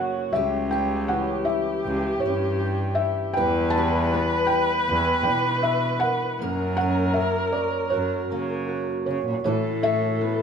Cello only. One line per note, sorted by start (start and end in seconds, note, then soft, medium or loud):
0.00 0.15 C#3 medium
0.33 1.61 C#2 medium
1.86 2.17 C#2 medium
2.24 3.20 G2 medium
3.37 4.65 E2 loud
4.89 5.21 E2 medium
5.27 6.23 B2 medium
6.41 7.69 F#2 medium
7.94 8.25 F#2 medium
8.32 8.96 C#3 medium
9.08 9.25 C#3 medium
9.27 9.43 A#2 medium
9.45 10.42 A2 medium